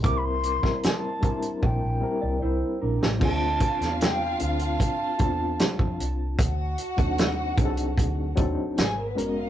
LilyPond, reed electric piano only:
\new Staff \with { instrumentName = "Reed electric piano" } { \time 4/4 \key c \mixolydian \tempo 4 = 76 <g bes c' e' bes'>8 r16 <g bes c' e' bes'>8 r16 <g bes c' d' e' bes'>8. r16 <g bes c' e' bes'>4 r8 | \key d \minor <f c' d' f' aes' a'>4 r8 <f c' d' f' a'>8. r16 <c' d' f' a'>4. | r8. <fis c' d' ees' a'>8 r16 <fis c' d' ees' aes' a'>8. r16 <fis c' d' ees' a'>8 r8 <aes ces' des' ges' bes'>16 r16 | }